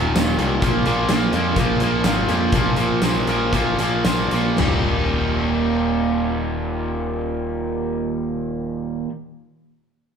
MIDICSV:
0, 0, Header, 1, 4, 480
1, 0, Start_track
1, 0, Key_signature, -3, "major"
1, 0, Tempo, 469484
1, 635, Time_signature, 4, 2, 24, 8
1, 2081, Tempo, 496278
1, 3521, Tempo, 531444
1, 4481, Tempo, 548948
1, 9357, End_track
2, 0, Start_track
2, 0, Title_t, "Overdriven electric guitar"
2, 0, Program_c, 0, 29
2, 0, Note_on_c, 0, 39, 78
2, 0, Note_on_c, 0, 46, 80
2, 0, Note_on_c, 0, 51, 78
2, 148, Note_off_c, 0, 39, 0
2, 154, Note_off_c, 0, 46, 0
2, 158, Note_off_c, 0, 51, 0
2, 161, Note_on_c, 0, 39, 71
2, 166, Note_on_c, 0, 46, 82
2, 170, Note_on_c, 0, 51, 81
2, 378, Note_off_c, 0, 39, 0
2, 384, Note_off_c, 0, 46, 0
2, 390, Note_off_c, 0, 51, 0
2, 390, Note_on_c, 0, 39, 76
2, 396, Note_on_c, 0, 46, 81
2, 402, Note_on_c, 0, 51, 82
2, 617, Note_off_c, 0, 39, 0
2, 620, Note_off_c, 0, 46, 0
2, 623, Note_off_c, 0, 51, 0
2, 646, Note_on_c, 0, 46, 91
2, 650, Note_on_c, 0, 53, 84
2, 655, Note_on_c, 0, 58, 91
2, 877, Note_off_c, 0, 46, 0
2, 881, Note_off_c, 0, 53, 0
2, 881, Note_on_c, 0, 46, 77
2, 885, Note_on_c, 0, 53, 77
2, 888, Note_off_c, 0, 58, 0
2, 892, Note_on_c, 0, 58, 85
2, 1131, Note_off_c, 0, 46, 0
2, 1135, Note_on_c, 0, 46, 87
2, 1139, Note_off_c, 0, 58, 0
2, 1141, Note_off_c, 0, 53, 0
2, 1143, Note_on_c, 0, 58, 89
2, 1145, Note_on_c, 0, 53, 84
2, 1375, Note_off_c, 0, 46, 0
2, 1379, Note_on_c, 0, 46, 73
2, 1380, Note_off_c, 0, 53, 0
2, 1383, Note_off_c, 0, 58, 0
2, 1384, Note_on_c, 0, 53, 78
2, 1387, Note_on_c, 0, 58, 76
2, 1599, Note_off_c, 0, 46, 0
2, 1607, Note_off_c, 0, 53, 0
2, 1611, Note_on_c, 0, 46, 78
2, 1619, Note_on_c, 0, 53, 83
2, 1625, Note_off_c, 0, 58, 0
2, 1629, Note_on_c, 0, 58, 84
2, 1848, Note_off_c, 0, 46, 0
2, 1850, Note_off_c, 0, 53, 0
2, 1860, Note_on_c, 0, 46, 64
2, 1862, Note_on_c, 0, 53, 68
2, 1865, Note_off_c, 0, 58, 0
2, 1869, Note_on_c, 0, 58, 75
2, 2089, Note_off_c, 0, 46, 0
2, 2093, Note_off_c, 0, 53, 0
2, 2101, Note_on_c, 0, 46, 72
2, 2105, Note_on_c, 0, 53, 73
2, 2107, Note_off_c, 0, 58, 0
2, 2111, Note_on_c, 0, 58, 75
2, 2317, Note_off_c, 0, 46, 0
2, 2322, Note_off_c, 0, 53, 0
2, 2329, Note_on_c, 0, 46, 72
2, 2334, Note_on_c, 0, 53, 71
2, 2338, Note_off_c, 0, 58, 0
2, 2342, Note_on_c, 0, 58, 88
2, 2564, Note_off_c, 0, 46, 0
2, 2566, Note_off_c, 0, 53, 0
2, 2571, Note_off_c, 0, 58, 0
2, 2576, Note_on_c, 0, 46, 87
2, 2577, Note_on_c, 0, 53, 95
2, 2583, Note_on_c, 0, 58, 86
2, 2779, Note_off_c, 0, 46, 0
2, 2781, Note_off_c, 0, 53, 0
2, 2786, Note_off_c, 0, 58, 0
2, 2790, Note_on_c, 0, 46, 75
2, 2793, Note_on_c, 0, 53, 69
2, 2797, Note_on_c, 0, 58, 76
2, 3027, Note_off_c, 0, 46, 0
2, 3034, Note_off_c, 0, 53, 0
2, 3038, Note_off_c, 0, 58, 0
2, 3038, Note_on_c, 0, 46, 84
2, 3045, Note_on_c, 0, 53, 78
2, 3049, Note_on_c, 0, 58, 86
2, 3273, Note_off_c, 0, 46, 0
2, 3280, Note_off_c, 0, 53, 0
2, 3284, Note_off_c, 0, 58, 0
2, 3284, Note_on_c, 0, 46, 71
2, 3292, Note_on_c, 0, 53, 68
2, 3296, Note_on_c, 0, 58, 76
2, 3512, Note_off_c, 0, 46, 0
2, 3522, Note_off_c, 0, 53, 0
2, 3524, Note_on_c, 0, 46, 68
2, 3526, Note_off_c, 0, 58, 0
2, 3533, Note_on_c, 0, 53, 79
2, 3537, Note_on_c, 0, 58, 78
2, 3754, Note_off_c, 0, 46, 0
2, 3758, Note_off_c, 0, 53, 0
2, 3759, Note_off_c, 0, 58, 0
2, 3765, Note_on_c, 0, 46, 66
2, 3768, Note_on_c, 0, 53, 66
2, 3770, Note_on_c, 0, 58, 78
2, 3988, Note_off_c, 0, 46, 0
2, 3990, Note_off_c, 0, 53, 0
2, 3998, Note_off_c, 0, 58, 0
2, 3999, Note_on_c, 0, 46, 66
2, 4001, Note_on_c, 0, 53, 67
2, 4009, Note_on_c, 0, 58, 76
2, 4235, Note_off_c, 0, 46, 0
2, 4241, Note_off_c, 0, 53, 0
2, 4246, Note_off_c, 0, 58, 0
2, 4246, Note_on_c, 0, 46, 66
2, 4252, Note_on_c, 0, 53, 68
2, 4257, Note_on_c, 0, 58, 79
2, 4472, Note_off_c, 0, 46, 0
2, 4472, Note_on_c, 0, 39, 78
2, 4474, Note_off_c, 0, 53, 0
2, 4477, Note_off_c, 0, 58, 0
2, 4481, Note_on_c, 0, 46, 86
2, 4488, Note_on_c, 0, 51, 78
2, 4496, Note_on_c, 0, 55, 92
2, 4502, Note_on_c, 0, 58, 89
2, 4510, Note_on_c, 0, 63, 86
2, 8412, Note_off_c, 0, 39, 0
2, 8420, Note_off_c, 0, 46, 0
2, 8428, Note_off_c, 0, 51, 0
2, 8436, Note_off_c, 0, 55, 0
2, 8441, Note_off_c, 0, 58, 0
2, 8449, Note_off_c, 0, 63, 0
2, 9357, End_track
3, 0, Start_track
3, 0, Title_t, "Picked electric bass"
3, 0, Program_c, 1, 34
3, 0, Note_on_c, 1, 27, 75
3, 137, Note_off_c, 1, 27, 0
3, 151, Note_on_c, 1, 27, 83
3, 369, Note_off_c, 1, 27, 0
3, 393, Note_on_c, 1, 36, 77
3, 609, Note_off_c, 1, 36, 0
3, 634, Note_on_c, 1, 34, 79
3, 849, Note_off_c, 1, 34, 0
3, 881, Note_on_c, 1, 34, 80
3, 1092, Note_off_c, 1, 34, 0
3, 1118, Note_on_c, 1, 34, 82
3, 1331, Note_off_c, 1, 34, 0
3, 1360, Note_on_c, 1, 41, 83
3, 1573, Note_off_c, 1, 41, 0
3, 1598, Note_on_c, 1, 34, 72
3, 1815, Note_off_c, 1, 34, 0
3, 1847, Note_on_c, 1, 34, 78
3, 2062, Note_off_c, 1, 34, 0
3, 2087, Note_on_c, 1, 32, 77
3, 2295, Note_off_c, 1, 32, 0
3, 2321, Note_on_c, 1, 41, 70
3, 2530, Note_off_c, 1, 41, 0
3, 2555, Note_on_c, 1, 34, 74
3, 2767, Note_off_c, 1, 34, 0
3, 2793, Note_on_c, 1, 34, 76
3, 3008, Note_off_c, 1, 34, 0
3, 3034, Note_on_c, 1, 34, 76
3, 3252, Note_off_c, 1, 34, 0
3, 3278, Note_on_c, 1, 34, 78
3, 3499, Note_off_c, 1, 34, 0
3, 3525, Note_on_c, 1, 34, 70
3, 3735, Note_off_c, 1, 34, 0
3, 3748, Note_on_c, 1, 34, 66
3, 3966, Note_off_c, 1, 34, 0
3, 3991, Note_on_c, 1, 34, 77
3, 4210, Note_off_c, 1, 34, 0
3, 4232, Note_on_c, 1, 34, 76
3, 4455, Note_off_c, 1, 34, 0
3, 4476, Note_on_c, 1, 27, 76
3, 8380, Note_off_c, 1, 27, 0
3, 9357, End_track
4, 0, Start_track
4, 0, Title_t, "Drums"
4, 160, Note_on_c, 9, 38, 101
4, 160, Note_on_c, 9, 42, 67
4, 160, Note_on_c, 9, 54, 101
4, 262, Note_off_c, 9, 38, 0
4, 262, Note_off_c, 9, 42, 0
4, 262, Note_off_c, 9, 54, 0
4, 396, Note_on_c, 9, 42, 49
4, 498, Note_off_c, 9, 42, 0
4, 634, Note_on_c, 9, 42, 70
4, 637, Note_on_c, 9, 36, 88
4, 736, Note_off_c, 9, 42, 0
4, 739, Note_off_c, 9, 36, 0
4, 875, Note_on_c, 9, 42, 57
4, 977, Note_off_c, 9, 42, 0
4, 1112, Note_on_c, 9, 38, 95
4, 1112, Note_on_c, 9, 42, 70
4, 1112, Note_on_c, 9, 54, 89
4, 1214, Note_off_c, 9, 38, 0
4, 1214, Note_off_c, 9, 42, 0
4, 1214, Note_off_c, 9, 54, 0
4, 1358, Note_on_c, 9, 42, 53
4, 1460, Note_off_c, 9, 42, 0
4, 1598, Note_on_c, 9, 42, 79
4, 1600, Note_on_c, 9, 36, 74
4, 1700, Note_off_c, 9, 42, 0
4, 1702, Note_off_c, 9, 36, 0
4, 1842, Note_on_c, 9, 42, 60
4, 1945, Note_off_c, 9, 42, 0
4, 2087, Note_on_c, 9, 38, 94
4, 2087, Note_on_c, 9, 42, 80
4, 2087, Note_on_c, 9, 54, 102
4, 2184, Note_off_c, 9, 38, 0
4, 2184, Note_off_c, 9, 42, 0
4, 2184, Note_off_c, 9, 54, 0
4, 2323, Note_on_c, 9, 42, 57
4, 2420, Note_off_c, 9, 42, 0
4, 2553, Note_on_c, 9, 42, 75
4, 2556, Note_on_c, 9, 36, 94
4, 2650, Note_off_c, 9, 42, 0
4, 2653, Note_off_c, 9, 36, 0
4, 2786, Note_on_c, 9, 42, 52
4, 2883, Note_off_c, 9, 42, 0
4, 3031, Note_on_c, 9, 38, 97
4, 3031, Note_on_c, 9, 42, 70
4, 3031, Note_on_c, 9, 54, 82
4, 3128, Note_off_c, 9, 38, 0
4, 3128, Note_off_c, 9, 42, 0
4, 3128, Note_off_c, 9, 54, 0
4, 3278, Note_on_c, 9, 42, 51
4, 3375, Note_off_c, 9, 42, 0
4, 3524, Note_on_c, 9, 36, 75
4, 3524, Note_on_c, 9, 42, 64
4, 3614, Note_off_c, 9, 36, 0
4, 3614, Note_off_c, 9, 42, 0
4, 3758, Note_on_c, 9, 42, 50
4, 3848, Note_off_c, 9, 42, 0
4, 3993, Note_on_c, 9, 38, 96
4, 3993, Note_on_c, 9, 42, 75
4, 3993, Note_on_c, 9, 54, 98
4, 4083, Note_off_c, 9, 38, 0
4, 4083, Note_off_c, 9, 42, 0
4, 4083, Note_off_c, 9, 54, 0
4, 4232, Note_on_c, 9, 42, 49
4, 4322, Note_off_c, 9, 42, 0
4, 4476, Note_on_c, 9, 38, 82
4, 4476, Note_on_c, 9, 43, 81
4, 4476, Note_on_c, 9, 49, 69
4, 4563, Note_off_c, 9, 38, 0
4, 4563, Note_off_c, 9, 43, 0
4, 4563, Note_off_c, 9, 49, 0
4, 9357, End_track
0, 0, End_of_file